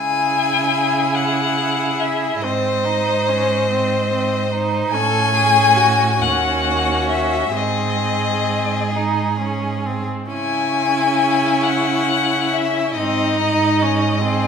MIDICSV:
0, 0, Header, 1, 5, 480
1, 0, Start_track
1, 0, Key_signature, 4, "minor"
1, 0, Tempo, 863309
1, 1349, Time_signature, 6, 3, 24, 8
1, 1824, Tempo, 840336
1, 3744, Tempo, 918836
1, 5664, Tempo, 887574
1, 6144, Tempo, 878477
1, 7104, Tempo, 827586
1, 7981, End_track
2, 0, Start_track
2, 0, Title_t, "Violin"
2, 0, Program_c, 0, 40
2, 0, Note_on_c, 0, 80, 58
2, 637, Note_on_c, 0, 78, 53
2, 645, Note_off_c, 0, 80, 0
2, 1109, Note_on_c, 0, 76, 47
2, 1117, Note_off_c, 0, 78, 0
2, 1342, Note_off_c, 0, 76, 0
2, 1345, Note_on_c, 0, 75, 50
2, 2507, Note_off_c, 0, 75, 0
2, 2758, Note_on_c, 0, 80, 82
2, 3498, Note_on_c, 0, 78, 62
2, 3507, Note_off_c, 0, 80, 0
2, 3977, Note_off_c, 0, 78, 0
2, 3980, Note_on_c, 0, 76, 57
2, 4226, Note_on_c, 0, 75, 53
2, 4234, Note_off_c, 0, 76, 0
2, 4949, Note_off_c, 0, 75, 0
2, 5674, Note_on_c, 0, 80, 62
2, 6375, Note_on_c, 0, 78, 60
2, 6383, Note_off_c, 0, 80, 0
2, 6865, Note_on_c, 0, 76, 53
2, 6873, Note_off_c, 0, 78, 0
2, 7103, Note_off_c, 0, 76, 0
2, 7106, Note_on_c, 0, 75, 57
2, 7981, Note_off_c, 0, 75, 0
2, 7981, End_track
3, 0, Start_track
3, 0, Title_t, "Violin"
3, 0, Program_c, 1, 40
3, 0, Note_on_c, 1, 68, 38
3, 1343, Note_on_c, 1, 72, 42
3, 1351, Note_off_c, 1, 68, 0
3, 2766, Note_off_c, 1, 72, 0
3, 2769, Note_on_c, 1, 69, 48
3, 2999, Note_off_c, 1, 69, 0
3, 3002, Note_on_c, 1, 68, 49
3, 3242, Note_on_c, 1, 66, 50
3, 3250, Note_off_c, 1, 68, 0
3, 3484, Note_off_c, 1, 66, 0
3, 3487, Note_on_c, 1, 66, 47
3, 4199, Note_off_c, 1, 66, 0
3, 4220, Note_on_c, 1, 68, 44
3, 5539, Note_off_c, 1, 68, 0
3, 5664, Note_on_c, 1, 64, 42
3, 7099, Note_on_c, 1, 63, 43
3, 7107, Note_off_c, 1, 64, 0
3, 7826, Note_on_c, 1, 68, 47
3, 7835, Note_off_c, 1, 63, 0
3, 7981, Note_off_c, 1, 68, 0
3, 7981, End_track
4, 0, Start_track
4, 0, Title_t, "Viola"
4, 0, Program_c, 2, 41
4, 0, Note_on_c, 2, 64, 40
4, 1361, Note_on_c, 2, 60, 41
4, 1369, Note_off_c, 2, 64, 0
4, 1585, Note_on_c, 2, 63, 38
4, 1593, Note_off_c, 2, 60, 0
4, 1829, Note_on_c, 2, 61, 42
4, 1837, Note_off_c, 2, 63, 0
4, 2064, Note_off_c, 2, 61, 0
4, 2067, Note_on_c, 2, 60, 42
4, 2294, Note_off_c, 2, 60, 0
4, 2303, Note_on_c, 2, 60, 43
4, 2530, Note_off_c, 2, 60, 0
4, 2541, Note_on_c, 2, 63, 45
4, 2776, Note_on_c, 2, 61, 48
4, 2784, Note_off_c, 2, 63, 0
4, 3483, Note_off_c, 2, 61, 0
4, 3486, Note_on_c, 2, 61, 47
4, 4198, Note_off_c, 2, 61, 0
4, 4219, Note_on_c, 2, 60, 42
4, 4883, Note_off_c, 2, 60, 0
4, 4942, Note_on_c, 2, 63, 42
4, 5167, Note_off_c, 2, 63, 0
4, 5185, Note_on_c, 2, 61, 37
4, 5426, Note_on_c, 2, 60, 35
4, 5433, Note_off_c, 2, 61, 0
4, 5665, Note_off_c, 2, 60, 0
4, 5679, Note_on_c, 2, 61, 40
4, 7091, Note_off_c, 2, 61, 0
4, 7115, Note_on_c, 2, 60, 48
4, 7352, Note_off_c, 2, 60, 0
4, 7356, Note_on_c, 2, 63, 43
4, 7603, Note_on_c, 2, 61, 43
4, 7612, Note_off_c, 2, 63, 0
4, 7828, Note_off_c, 2, 61, 0
4, 7832, Note_on_c, 2, 60, 48
4, 7981, Note_off_c, 2, 60, 0
4, 7981, End_track
5, 0, Start_track
5, 0, Title_t, "Cello"
5, 0, Program_c, 3, 42
5, 0, Note_on_c, 3, 49, 37
5, 1327, Note_off_c, 3, 49, 0
5, 1352, Note_on_c, 3, 44, 42
5, 2750, Note_off_c, 3, 44, 0
5, 2771, Note_on_c, 3, 45, 46
5, 3496, Note_on_c, 3, 39, 50
5, 3505, Note_off_c, 3, 45, 0
5, 4212, Note_off_c, 3, 39, 0
5, 4215, Note_on_c, 3, 44, 42
5, 5536, Note_off_c, 3, 44, 0
5, 5665, Note_on_c, 3, 49, 40
5, 7099, Note_on_c, 3, 44, 46
5, 7108, Note_off_c, 3, 49, 0
5, 7981, Note_off_c, 3, 44, 0
5, 7981, End_track
0, 0, End_of_file